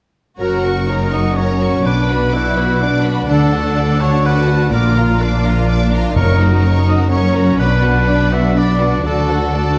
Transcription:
0.38 double bass section F#1, harp F#2, cello section F#2, viola section F#4, violin section A#4 C#5 A#5, oboe A#4
0.56 harp C#4
0.64 violin section F#4 A#4 C#6
0.72 harp F#4
0.88 viola section D#4, violin section A#4 C#5 A#5, harp C#5
1.04 harp F#4
1.13 violin section F#4 A#4 C#6, oboe D#5
1.20 harp F#5
1.36 viola section C#4, violin section A#4 C#5 A#5, oboe C#5, harp C#5
1.53 harp F#4
1.61 violin section F#4 A#4 C#6
1.69 harp C#4
1.83 double bass section B1, cello section B2, harp B2, viola section D4, violin section D4 D5 D6, oboe B4
2.01 harp D4
2.09 violin section F#4 B4 B5
2.18 harp F#4
2.32 violin section D4 D5 D6, viola section E4, oboe F#4, harp B4
2.51 harp D5
2.56 violin section F#4 B4 B5
2.66 harp F#5
2.79 violin section D4 D5 D6, viola section D4, harp D5
2.98 harp B4
3.04 violin section F#4 B4 B5
3.14 harp F#4
3.28 double bass section D2, cello section D3, harp D3, violin section A4 D5 F#5, oboe A4
3.45 harp D4
3.53 violin section F#4 F#5 A5
3.60 harp F#4
3.77 harp A4, violin section A4 D5 F#5
3.93 harp D5
3.99 violin section F#4 F#5 A5, oboe C#5
4.09 harp F#5
4.24 viola section F#4, violin section A4 D5 F#5, oboe B4, harp D5
4.41 harp A4
4.47 violin section F#4 F#5 A5
4.56 harp F#4
4.71 double bass section A#1, harp A#2, cello section A#2, violin section D4 D5 D6, viola section F4, oboe A#4
4.89 harp D4
4.95 violin section F4 F5 A#5
5.04 harp F4
5.19 viola section D4, violin section D4 D5 D6, oboe F4, harp A#4
5.36 harp D5
5.45 violin section F4 F5 A#5
5.53 harp F5
5.68 violin section D4 D5 D6, viola section D4, harp D5
5.85 harp A#4
5.93 violin section F4 F5 A#5
6.01 harp F4
6.15 double bass section F#1, timpani F#2, cello section F#2, harp F#2, viola section D#4, oboe A#4, violin section A#4 C#5 C#6
6.32 harp C#4
6.40 violin section F#4 A#4 A#5
6.48 harp F#4
6.63 harp A#4, violin section A#4 C#5 C#6
6.79 harp C#5
6.87 violin section F#4 A#4 A#5, oboe D#5
6.96 harp F#5
7.11 viola section C#4, violin section A#4 C#5 C#6, harp C#5, oboe C#5
7.27 harp A#4
7.35 violin section F#4 A#4 A#5
7.44 harp F#4
7.58 double bass section B1, harp B2, cello section B2, violin section D4 D5 B5, viola section D4, oboe B4
7.75 harp D4
7.84 violin section F#4 B4 F#5
7.91 harp F#4
8.07 violin section D4 D5 B5, harp D5
8.24 harp F#4
8.31 violin section F#4 B4 F#5, oboe E5
8.40 harp F#5
8.56 viola section D4, violin section D4 D5 B5, harp D5, oboe D5
8.73 harp F#4
8.80 violin section F#4 B4 F#5
8.89 harp D4
9.04 double bass section D2, cello section D3, harp D3, viola section F#4, violin section A4 D5 A5, oboe A4
9.21 harp D4
9.30 violin section F#4 A4 F#5
9.37 harp F#4
9.52 viola section F#4, violin section A4 D5 A5, harp D5
9.70 harp F#4

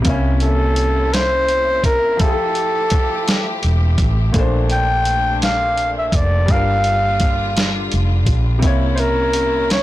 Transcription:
Already playing: string section A#3
0.02 grand piano C3 A#3, kick, closed hi-hat
0.06 fingered electric bass C2, string section C3 C#4 E4, grand piano C#4 E4
0.40 flugelhorn A4, closed hi-hat
0.76 closed hi-hat
1.14 flugelhorn C5, snare, closed hi-hat
1.49 closed hi-hat
1.84 fingered electric bass G1, flugelhorn A#4, kick, closed hi-hat
2.17 grand piano F3 E4, string section F3 A3 G4, flugelhorn A4, kick, closed hi-hat
2.21 fingered electric bass F1, grand piano G4 G#4
2.31 grand piano A4
2.55 closed hi-hat
2.90 kick, closed hi-hat
3.28 snare, closed hi-hat
3.63 fingered electric bass E1, closed hi-hat
3.98 fingered electric bass A1, kick, closed hi-hat
4.32 fingered electric bass A#1, grand piano A#2 A3, string section A#2 C3 D4, kick, closed hi-hat
4.37 grand piano D4 C5
4.70 flugelhorn G5, closed hi-hat
5.05 closed hi-hat
5.42 flugelhorn F5, snare, closed hi-hat
5.78 closed hi-hat
5.98 flugelhorn E5
6.08 flugelhorn E5
6.12 fingered electric bass F1, flugelhorn D5, kick, closed hi-hat
6.46 fingered electric bass G1, string section D3 G3 F4, grand piano G3 D4, kick, closed hi-hat
6.51 grand piano F4 A#4, flugelhorn F5
6.84 closed hi-hat
7.20 kick, closed hi-hat
7.57 snare, closed hi-hat
7.92 fingered electric bass F1, closed hi-hat
8.26 fingered electric bass A#1, kick, closed hi-hat
8.59 grand piano C3 A#3, string section C#4 E4, kick, closed hi-hat
8.63 fingered electric bass C2, string section C3, grand piano E4 C#5
8.95 flugelhorn C5, closed hi-hat
9.00 flugelhorn A#4
9.33 closed hi-hat
9.70 flugelhorn C#5, snare, closed hi-hat

